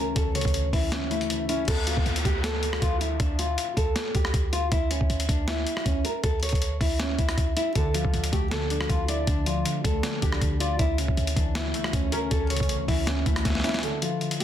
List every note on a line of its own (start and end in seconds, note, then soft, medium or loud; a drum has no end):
0.00 0.16 D2 medium
0.00 0.35 C#3 medium
0.00 0.16 E3 medium
0.00 0.54 A3 medium
0.00 0.92 C#4 medium
0.00 0.15 A#4 medium
0.16 0.44 D2 loud
0.16 0.53 D2 loud
0.16 0.34 A4 medium
0.16 kick loud
0.16 closed hi-hat medium
0.35 1.30 C#3 medium
0.35 0.71 C#5 medium
0.35 closed hi-hat medium
0.41 0.72 D2 loud
0.41 kick loud
0.41 closed hi-hat medium
0.48 closed hi-hat medium
0.54 0.91 D2 medium
0.54 closed hi-hat medium
0.73 0.91 D2 loud
0.73 1.68 E3 medium
0.73 0.91 E4 medium
0.73 kick loud
0.73 open hi-hat medium
0.92 1.29 D2 loud
0.92 1.10 C#4 medium
0.92 snare loud
0.92 closed hi-hat medium
1.11 1.68 A3 medium
1.11 1.47 E4 medium
1.11 closed hi-hat medium
1.21 closed hi-hat medium
1.30 1.68 D2 medium
1.30 closed hi-hat medium
1.49 1.68 C#4 medium
1.49 1.67 E4 medium
1.49 closed hi-hat medium
1.68 1.96 D2 loud
1.68 1.86 A4 loud
1.68 kick loud
1.68 closed hi-hat medium
1.68 crash loud
1.68 downlifter medium
1.87 2.23 F4 medium
1.87 closed hi-hat medium
1.97 2.05 D2 loud
1.97 kick loud
2.06 2.24 D2 loud
2.06 closed hi-hat medium
2.16 closed hi-hat medium
2.25 2.80 D2 loud
2.25 2.43 G4 medium
2.25 kick medium
2.25 closed hi-hat medium
2.44 2.80 A4 medium
2.44 snare loud
2.44 closed hi-hat loud
2.63 closed hi-hat medium
2.73 cross-stick medium
2.82 3.18 D2 loud
2.82 3.00 F4 medium
2.82 kick loud
2.82 closed hi-hat medium
3.01 3.18 E4 medium
3.01 closed hi-hat medium
3.20 3.56 D2 loud
3.20 3.37 D4 medium
3.20 kick loud
3.20 closed hi-hat medium
3.39 3.75 F4 medium
3.39 closed hi-hat medium
3.58 closed hi-hat medium
3.77 3.95 D2 loud
3.77 4.12 A4 medium
3.77 kick loud
3.77 closed hi-hat medium
3.96 snare loud
3.96 closed hi-hat medium
4.15 4.33 D2 loud
4.15 4.50 G4 medium
4.15 kick loud
4.15 closed hi-hat medium
4.25 cross-stick medium
4.34 4.70 D2 loud
4.34 kick loud
4.34 closed hi-hat medium
4.53 4.70 F4 medium
4.53 closed hi-hat medium
4.72 5.00 D2 loud
4.72 4.89 E4 loud
4.72 kick loud
4.72 closed hi-hat medium
4.91 5.26 C#4 medium
4.91 closed hi-hat medium
5.01 5.09 D2 loud
5.01 kick loud
5.10 5.28 D2 loud
5.10 closed hi-hat medium
5.20 closed hi-hat medium
5.29 5.65 D2 loud
5.29 5.46 D4 medium
5.29 kick medium
5.29 closed hi-hat medium
5.48 5.83 E4 medium
5.48 snare loud
5.48 closed hi-hat loud
5.67 closed hi-hat medium
5.77 cross-stick medium
5.86 6.04 D2 loud
5.86 6.03 C#4 medium
5.86 kick loud
5.86 closed hi-hat medium
6.04 6.22 A#4 medium
6.04 closed hi-hat medium
6.24 6.52 D2 loud
6.24 6.41 A4 medium
6.24 kick loud
6.24 closed hi-hat medium
6.43 6.78 C#5 medium
6.43 closed hi-hat medium
6.49 6.79 D2 loud
6.49 kick loud
6.49 closed hi-hat medium
6.55 closed hi-hat medium
6.62 closed hi-hat medium
6.81 7.17 D2 loud
6.81 6.98 E4 medium
6.81 kick loud
6.81 open hi-hat medium
6.99 7.17 C#4 medium
6.99 snare loud
6.99 closed hi-hat medium
7.18 7.37 D2 loud
7.18 7.54 E4 medium
7.18 kick loud
7.18 closed hi-hat medium
7.29 cross-stick medium
7.29 closed hi-hat medium
7.38 7.56 D2 loud
7.38 kick loud
7.38 closed hi-hat medium
7.57 7.74 E4 medium
7.57 closed hi-hat medium
7.75 8.03 D2 loud
7.75 8.13 D3 loud
7.75 7.93 A4 loud
7.75 kick loud
7.75 closed hi-hat medium
7.94 8.89 F3 medium
7.94 8.30 F4 medium
7.94 closed hi-hat medium
8.05 8.13 D2 loud
8.05 kick loud
8.13 8.32 D2 loud
8.13 8.50 D3 medium
8.13 closed hi-hat medium
8.24 closed hi-hat medium
8.32 8.87 D2 loud
8.32 9.28 A3 medium
8.32 8.50 G4 medium
8.32 kick loud
8.32 closed hi-hat medium
8.51 8.88 D3 medium
8.51 8.87 A4 medium
8.51 snare loud
8.51 closed hi-hat medium
8.70 9.65 D4 medium
8.70 closed hi-hat medium
8.81 cross-stick medium
8.89 9.26 D2 loud
8.89 9.26 D3 medium
8.89 9.07 F4 medium
8.89 kick loud
8.89 closed hi-hat medium
9.08 9.26 E4 medium
9.08 10.03 D5 medium
9.08 closed hi-hat medium
9.27 9.64 D2 loud
9.27 9.64 D3 loud
9.27 9.45 D4 medium
9.27 kick loud
9.27 closed hi-hat medium
9.46 10.41 F3 medium
9.46 9.82 F4 medium
9.46 closed hi-hat medium
9.65 10.02 D3 medium
9.65 closed hi-hat medium
9.84 10.03 D2 loud
9.84 10.79 A3 medium
9.84 10.20 A4 medium
9.84 kick loud
9.84 closed hi-hat medium
10.03 10.40 D3 medium
10.03 snare loud
10.03 closed hi-hat medium
10.22 10.41 D2 loud
10.22 10.79 D4 medium
10.22 10.58 G4 medium
10.22 kick medium
10.22 closed hi-hat medium
10.32 cross-stick medium
10.41 10.78 D2 loud
10.41 10.79 D3 medium
10.41 kick loud
10.41 closed hi-hat medium
10.60 10.78 F4 medium
10.60 10.79 D5 loud
10.60 closed hi-hat medium
10.79 11.16 D2 loud
10.79 11.07 D2 loud
10.79 10.97 E4 loud
10.79 kick loud
10.79 closed hi-hat medium
10.98 11.93 C#3 medium
10.98 11.34 C#4 medium
10.98 closed hi-hat medium
11.08 11.17 D2 loud
11.08 kick loud
11.17 11.54 D2 medium
11.17 11.36 D2 loud
11.17 closed hi-hat medium
11.27 closed hi-hat medium
11.36 11.73 D2 loud
11.36 12.31 E3 medium
11.36 11.54 D4 medium
11.36 kick loud
11.36 closed hi-hat medium
11.55 11.92 D2 medium
11.55 11.91 E4 medium
11.55 snare loud
11.55 closed hi-hat medium
11.74 12.69 A3 medium
11.74 closed hi-hat medium
11.84 cross-stick medium
11.93 12.30 D2 medium
11.93 12.11 D2 loud
11.93 12.11 C#4 medium
11.93 kick loud
11.93 closed hi-hat medium
12.12 13.07 C#4 loud
12.12 12.30 A#4 medium
12.12 closed hi-hat medium
12.31 12.59 D2 loud
12.31 12.68 D2 loud
12.31 12.49 A4 medium
12.31 kick loud
12.31 closed hi-hat medium
12.50 13.45 C#3 medium
12.50 12.86 C#5 medium
12.50 closed hi-hat medium
12.56 12.87 D2 loud
12.56 kick loud
12.56 closed hi-hat medium
12.63 closed hi-hat medium
12.69 13.06 D2 medium
12.69 closed hi-hat medium
12.88 13.25 D2 loud
12.88 13.83 E3 medium
12.88 13.06 E4 medium
12.88 kick loud
12.88 open hi-hat medium
13.07 13.44 D2 loud
13.07 13.25 C#4 medium
13.07 snare loud
13.07 closed hi-hat medium
13.26 13.44 D2 loud
13.26 13.83 A3 medium
13.26 13.62 E4 medium
13.26 kick loud
13.26 closed hi-hat medium
13.36 cross-stick medium
13.36 closed hi-hat medium
13.45 13.63 D2 loud
13.45 13.83 D2 medium
13.45 kick loud
13.45 snare medium
13.45 closed hi-hat medium
13.50 snare medium
13.55 snare medium
13.60 snare medium
13.64 13.83 C#4 medium
13.64 13.82 E4 medium
13.64 snare loud
13.64 closed hi-hat medium
13.69 snare medium
13.74 snare loud
13.79 snare loud
13.83 14.20 D3 loud
13.83 14.01 A4 medium
13.83 closed hi-hat medium
14.02 14.44 F3 medium
14.02 14.38 F4 medium
14.02 closed hi-hat medium
14.21 14.44 D3 medium
14.21 closed hi-hat soft
14.31 closed hi-hat medium
14.40 14.44 A3 medium
14.40 14.44 G4 medium
14.40 closed hi-hat medium